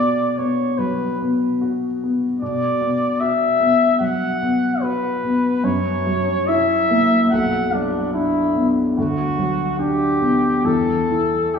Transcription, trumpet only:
0, 0, Header, 1, 2, 480
1, 0, Start_track
1, 0, Key_signature, 2, "minor"
1, 0, Tempo, 803213
1, 1440, Time_signature, 4, 2, 24, 8
1, 2875, Tempo, 831025
1, 5755, Tempo, 878477
1, 6735, End_track
2, 0, Start_track
2, 0, Title_t, "Trumpet"
2, 0, Program_c, 0, 56
2, 0, Note_on_c, 0, 74, 76
2, 227, Note_on_c, 0, 73, 65
2, 236, Note_off_c, 0, 74, 0
2, 469, Note_on_c, 0, 71, 65
2, 478, Note_off_c, 0, 73, 0
2, 715, Note_off_c, 0, 71, 0
2, 1432, Note_on_c, 0, 74, 72
2, 1914, Note_on_c, 0, 76, 89
2, 1923, Note_off_c, 0, 74, 0
2, 2383, Note_off_c, 0, 76, 0
2, 2386, Note_on_c, 0, 78, 81
2, 2879, Note_on_c, 0, 71, 67
2, 2887, Note_off_c, 0, 78, 0
2, 3356, Note_on_c, 0, 73, 80
2, 3365, Note_off_c, 0, 71, 0
2, 3834, Note_on_c, 0, 76, 90
2, 3842, Note_off_c, 0, 73, 0
2, 4311, Note_off_c, 0, 76, 0
2, 4315, Note_on_c, 0, 78, 82
2, 4564, Note_on_c, 0, 62, 61
2, 4572, Note_off_c, 0, 78, 0
2, 4793, Note_off_c, 0, 62, 0
2, 4796, Note_on_c, 0, 64, 65
2, 5110, Note_off_c, 0, 64, 0
2, 5273, Note_on_c, 0, 66, 76
2, 5731, Note_off_c, 0, 66, 0
2, 5749, Note_on_c, 0, 67, 82
2, 6224, Note_on_c, 0, 69, 72
2, 6232, Note_off_c, 0, 67, 0
2, 6713, Note_on_c, 0, 67, 59
2, 6721, Note_off_c, 0, 69, 0
2, 6735, Note_off_c, 0, 67, 0
2, 6735, End_track
0, 0, End_of_file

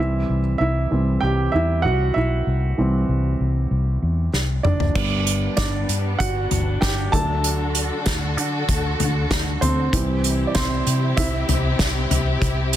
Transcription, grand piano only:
0, 0, Header, 1, 2, 480
1, 0, Start_track
1, 0, Tempo, 621762
1, 1904, Time_signature, 4, 2, 24, 8
1, 9855, End_track
2, 0, Start_track
2, 0, Title_t, "Grand piano"
2, 0, Program_c, 0, 0
2, 0, Note_on_c, 0, 52, 47
2, 0, Note_on_c, 0, 55, 45
2, 0, Note_on_c, 0, 60, 52
2, 0, Note_on_c, 0, 64, 58
2, 0, Note_on_c, 0, 76, 75
2, 132, Control_c, 0, 64, 127
2, 300, Note_off_c, 0, 52, 0
2, 302, Note_off_c, 0, 55, 0
2, 305, Note_off_c, 0, 60, 0
2, 436, Note_off_c, 0, 64, 0
2, 438, Note_off_c, 0, 76, 0
2, 449, Note_on_c, 0, 76, 79
2, 470, Note_on_c, 0, 64, 61
2, 700, Note_on_c, 0, 52, 40
2, 702, Note_on_c, 0, 55, 37
2, 708, Note_on_c, 0, 60, 46
2, 916, Note_off_c, 0, 64, 0
2, 917, Note_off_c, 0, 52, 0
2, 919, Note_off_c, 0, 55, 0
2, 922, Note_off_c, 0, 60, 0
2, 930, Note_on_c, 0, 79, 87
2, 951, Note_off_c, 0, 76, 0
2, 952, Note_on_c, 0, 67, 72
2, 1159, Note_off_c, 0, 79, 0
2, 1171, Note_off_c, 0, 67, 0
2, 1172, Note_on_c, 0, 76, 77
2, 1196, Note_on_c, 0, 64, 60
2, 1400, Note_off_c, 0, 76, 0
2, 1407, Note_on_c, 0, 78, 84
2, 1413, Note_off_c, 0, 64, 0
2, 1431, Note_on_c, 0, 66, 66
2, 1651, Note_off_c, 0, 66, 0
2, 1651, Note_on_c, 0, 76, 78
2, 1663, Note_off_c, 0, 78, 0
2, 1673, Note_on_c, 0, 64, 52
2, 2145, Note_on_c, 0, 52, 44
2, 2149, Note_on_c, 0, 55, 41
2, 2153, Note_on_c, 0, 60, 52
2, 3309, Note_off_c, 0, 76, 0
2, 3319, Note_off_c, 0, 64, 0
2, 3577, Note_on_c, 0, 74, 76
2, 3597, Note_on_c, 0, 62, 56
2, 3795, Note_off_c, 0, 52, 0
2, 3797, Note_off_c, 0, 55, 0
2, 3800, Note_off_c, 0, 60, 0
2, 3822, Note_off_c, 0, 62, 0
2, 3823, Note_on_c, 0, 55, 48
2, 3831, Note_on_c, 0, 59, 42
2, 3834, Note_on_c, 0, 62, 53
2, 3836, Control_c, 0, 64, 0
2, 3969, Control_c, 0, 64, 127
2, 4271, Note_off_c, 0, 74, 0
2, 4297, Note_on_c, 0, 74, 82
2, 4301, Note_off_c, 0, 62, 0
2, 4313, Note_on_c, 0, 62, 63
2, 4514, Note_off_c, 0, 55, 0
2, 4518, Note_off_c, 0, 59, 0
2, 4759, Note_off_c, 0, 62, 0
2, 4775, Note_on_c, 0, 78, 88
2, 4792, Note_on_c, 0, 66, 67
2, 4797, Note_off_c, 0, 74, 0
2, 5230, Note_off_c, 0, 78, 0
2, 5239, Note_off_c, 0, 66, 0
2, 5256, Note_on_c, 0, 79, 84
2, 5273, Note_on_c, 0, 67, 69
2, 5484, Note_off_c, 0, 79, 0
2, 5494, Note_off_c, 0, 67, 0
2, 5498, Note_on_c, 0, 81, 105
2, 5504, Note_on_c, 0, 54, 47
2, 5509, Note_on_c, 0, 57, 45
2, 5513, Note_on_c, 0, 62, 50
2, 5515, Note_on_c, 0, 69, 65
2, 5518, Control_c, 0, 64, 0
2, 5636, Control_c, 0, 64, 127
2, 5825, Note_off_c, 0, 54, 0
2, 5828, Note_off_c, 0, 57, 0
2, 5830, Note_off_c, 0, 62, 0
2, 7392, Note_off_c, 0, 81, 0
2, 7400, Note_off_c, 0, 69, 0
2, 7420, Note_on_c, 0, 72, 76
2, 7432, Note_on_c, 0, 60, 60
2, 7663, Note_off_c, 0, 60, 0
2, 7666, Note_on_c, 0, 52, 51
2, 7671, Note_on_c, 0, 55, 45
2, 7674, Note_on_c, 0, 60, 56
2, 7676, Control_c, 0, 64, 0
2, 7831, Control_c, 0, 64, 127
2, 8085, Note_on_c, 0, 74, 59
2, 8109, Note_off_c, 0, 72, 0
2, 8142, Note_on_c, 0, 72, 81
2, 8143, Note_off_c, 0, 74, 0
2, 8144, Note_off_c, 0, 60, 0
2, 8156, Note_on_c, 0, 60, 63
2, 8355, Note_off_c, 0, 52, 0
2, 8357, Note_off_c, 0, 55, 0
2, 8600, Note_off_c, 0, 60, 0
2, 8621, Note_on_c, 0, 76, 78
2, 8633, Note_on_c, 0, 64, 59
2, 8638, Note_off_c, 0, 72, 0
2, 9855, Note_off_c, 0, 64, 0
2, 9855, Note_off_c, 0, 76, 0
2, 9855, End_track
0, 0, End_of_file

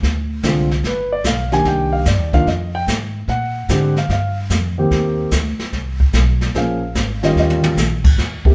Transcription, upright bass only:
0, 0, Header, 1, 3, 480
1, 0, Start_track
1, 0, Key_signature, -3, "major"
1, 0, Tempo, 407609
1, 27, Time_signature, 4, 2, 24, 8
1, 10065, End_track
2, 0, Start_track
2, 0, Title_t, "Upright bass"
2, 0, Program_c, 0, 32
2, 28, Note_on_c, 0, 38, 72
2, 493, Note_off_c, 0, 38, 0
2, 507, Note_on_c, 0, 36, 82
2, 972, Note_off_c, 0, 36, 0
2, 981, Note_on_c, 0, 31, 70
2, 1449, Note_off_c, 0, 31, 0
2, 1464, Note_on_c, 0, 35, 79
2, 1931, Note_off_c, 0, 35, 0
2, 1940, Note_on_c, 0, 36, 73
2, 2408, Note_off_c, 0, 36, 0
2, 2424, Note_on_c, 0, 43, 79
2, 2573, Note_off_c, 0, 43, 0
2, 2573, Note_on_c, 0, 39, 52
2, 2726, Note_off_c, 0, 39, 0
2, 2733, Note_on_c, 0, 36, 58
2, 2887, Note_off_c, 0, 36, 0
2, 2903, Note_on_c, 0, 41, 79
2, 3369, Note_off_c, 0, 41, 0
2, 3382, Note_on_c, 0, 44, 79
2, 3849, Note_off_c, 0, 44, 0
2, 3860, Note_on_c, 0, 46, 79
2, 4328, Note_off_c, 0, 46, 0
2, 4340, Note_on_c, 0, 44, 80
2, 4808, Note_off_c, 0, 44, 0
2, 4815, Note_on_c, 0, 43, 76
2, 5285, Note_off_c, 0, 43, 0
2, 5294, Note_on_c, 0, 41, 83
2, 5765, Note_off_c, 0, 41, 0
2, 5780, Note_on_c, 0, 39, 79
2, 6248, Note_off_c, 0, 39, 0
2, 6260, Note_on_c, 0, 38, 85
2, 6561, Note_off_c, 0, 38, 0
2, 6740, Note_on_c, 0, 36, 70
2, 7208, Note_off_c, 0, 36, 0
2, 7222, Note_on_c, 0, 35, 83
2, 7689, Note_off_c, 0, 35, 0
2, 7706, Note_on_c, 0, 34, 74
2, 8171, Note_off_c, 0, 34, 0
2, 8185, Note_on_c, 0, 32, 86
2, 8648, Note_off_c, 0, 32, 0
2, 8655, Note_on_c, 0, 39, 74
2, 9126, Note_off_c, 0, 39, 0
2, 9139, Note_on_c, 0, 34, 84
2, 9607, Note_off_c, 0, 34, 0
2, 9627, Note_on_c, 0, 39, 77
2, 10065, Note_off_c, 0, 39, 0
2, 10065, End_track
3, 0, Start_track
3, 0, Title_t, "Muted upright bass strokes"
3, 6578, Note_on_c, 9, 29, 37
3, 6696, Note_off_c, 9, 29, 0
3, 10065, End_track
0, 0, End_of_file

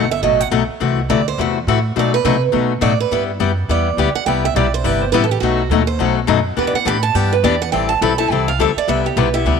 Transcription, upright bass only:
0, 0, Header, 1, 3, 480
1, 0, Start_track
1, 0, Key_signature, 1, "minor"
1, 0, Tempo, 288323
1, 1335, Time_signature, 4, 2, 24, 8
1, 15979, End_track
2, 0, Start_track
2, 0, Title_t, "Upright bass"
2, 0, Program_c, 0, 32
2, 0, Note_on_c, 0, 31, 87
2, 354, Note_off_c, 0, 31, 0
2, 365, Note_on_c, 0, 33, 78
2, 836, Note_off_c, 0, 33, 0
2, 853, Note_on_c, 0, 35, 87
2, 1118, Note_off_c, 0, 35, 0
2, 1342, Note_on_c, 0, 36, 75
2, 1805, Note_off_c, 0, 36, 0
2, 1815, Note_on_c, 0, 38, 91
2, 2281, Note_off_c, 0, 38, 0
2, 2295, Note_on_c, 0, 40, 82
2, 2762, Note_off_c, 0, 40, 0
2, 2779, Note_on_c, 0, 45, 94
2, 3244, Note_off_c, 0, 45, 0
2, 3267, Note_on_c, 0, 47, 75
2, 3728, Note_off_c, 0, 47, 0
2, 3735, Note_on_c, 0, 48, 89
2, 4202, Note_off_c, 0, 48, 0
2, 4219, Note_on_c, 0, 47, 84
2, 4676, Note_off_c, 0, 47, 0
2, 4686, Note_on_c, 0, 45, 83
2, 5157, Note_off_c, 0, 45, 0
2, 5176, Note_on_c, 0, 43, 73
2, 5642, Note_off_c, 0, 43, 0
2, 5651, Note_on_c, 0, 42, 89
2, 6120, Note_off_c, 0, 42, 0
2, 6135, Note_on_c, 0, 40, 80
2, 6602, Note_off_c, 0, 40, 0
2, 6610, Note_on_c, 0, 38, 92
2, 6877, Note_off_c, 0, 38, 0
2, 7092, Note_on_c, 0, 36, 74
2, 7560, Note_off_c, 0, 36, 0
2, 7571, Note_on_c, 0, 35, 91
2, 8039, Note_off_c, 0, 35, 0
2, 8056, Note_on_c, 0, 31, 85
2, 8516, Note_off_c, 0, 31, 0
2, 8526, Note_on_c, 0, 33, 95
2, 8996, Note_off_c, 0, 33, 0
2, 9009, Note_on_c, 0, 35, 78
2, 9472, Note_off_c, 0, 35, 0
2, 9482, Note_on_c, 0, 39, 93
2, 9954, Note_off_c, 0, 39, 0
2, 9967, Note_on_c, 0, 35, 84
2, 10436, Note_off_c, 0, 35, 0
2, 10445, Note_on_c, 0, 42, 97
2, 10915, Note_off_c, 0, 42, 0
2, 10938, Note_on_c, 0, 40, 79
2, 11196, Note_off_c, 0, 40, 0
2, 11411, Note_on_c, 0, 45, 90
2, 11878, Note_off_c, 0, 45, 0
2, 11892, Note_on_c, 0, 43, 81
2, 12359, Note_off_c, 0, 43, 0
2, 12373, Note_on_c, 0, 40, 95
2, 12839, Note_off_c, 0, 40, 0
2, 12856, Note_on_c, 0, 33, 74
2, 13321, Note_off_c, 0, 33, 0
2, 13339, Note_on_c, 0, 35, 87
2, 13803, Note_off_c, 0, 35, 0
2, 13820, Note_on_c, 0, 36, 84
2, 14283, Note_off_c, 0, 36, 0
2, 14298, Note_on_c, 0, 38, 86
2, 14560, Note_off_c, 0, 38, 0
2, 14776, Note_on_c, 0, 36, 72
2, 15242, Note_off_c, 0, 36, 0
2, 15253, Note_on_c, 0, 35, 91
2, 15720, Note_off_c, 0, 35, 0
2, 15730, Note_on_c, 0, 38, 86
2, 15979, Note_off_c, 0, 38, 0
2, 15979, End_track
3, 0, Start_track
3, 0, Title_t, "Muted upright bass strokes"
3, 1130, Note_on_c, 9, 29, 41
3, 1296, Note_off_c, 9, 29, 0
3, 6893, Note_on_c, 9, 29, 39
3, 7059, Note_off_c, 9, 29, 0
3, 11206, Note_on_c, 9, 29, 45
3, 11373, Note_off_c, 9, 29, 0
3, 14581, Note_on_c, 9, 29, 38
3, 14747, Note_off_c, 9, 29, 0
3, 15979, End_track
0, 0, End_of_file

